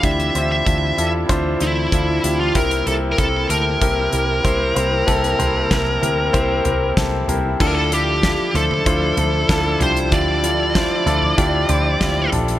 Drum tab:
CC |----------------|----------------|----------------|x---------------|
HH |xxx-x-x-x-x-x-x-|xxx-x-x-x-x-x-x-|xxx-x-x-x-x-x-x-|--x-x-x-x-x-x-xx|
SD |----------------|----------------|----o-------o---|----o-------o---|
FT |----------------|----------------|--o---o---o---o-|------oo--o---o-|
BD |o---o---o---o---|o---o---o---o---|o---o---o---o---|o---o---o---o---|

CC |----------------|
HH |x-x-x-x-x-x-x-xx|
SD |----o-------o---|
FT |------oo--o---o-|
BD |o---o---o---o---|